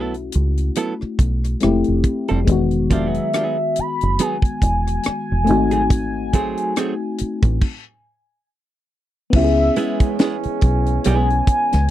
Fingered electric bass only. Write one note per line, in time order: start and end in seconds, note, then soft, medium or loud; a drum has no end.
0.00 0.30 B1 loud
0.35 0.69 C#2 medium
1.02 muted fingered electric bass stroke soft
1.20 1.54 B1 medium
1.64 1.82 F1 medium
1.88 2.02 F1 medium
2.31 2.45 F1 medium
2.49 3.18 E1 loud
3.79 muted fingered electric bass stroke soft
4.03 4.17 F#1 medium
4.44 muted fingered electric bass stroke soft
4.63 4.97 E1 medium
5.08 muted fingered electric bass stroke soft
5.32 5.50 E1 medium
5.50 6.53 G#1 medium
7.21 muted fingered electric bass stroke soft
7.44 7.59 A1 loud
9.34 9.69 C#2 loud
10.45 muted fingered electric bass stroke soft
10.63 10.98 B1 loud
11.06 11.41 B1 loud
11.74 11.88 C#2 loud